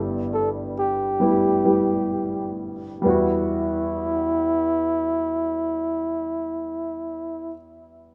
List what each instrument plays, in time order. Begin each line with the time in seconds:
Already playing: grand piano G1 G2 G3 B3 E4 G4
0.34 flugelhorn A4
0.79 flugelhorn G4
1.20 grand piano G3 B3 E4 G4
1.65 grand piano G3 B3 E4 G4
3.02 grand piano E2 G3 B3
3.06 grand piano E4 F#4, flugelhorn E4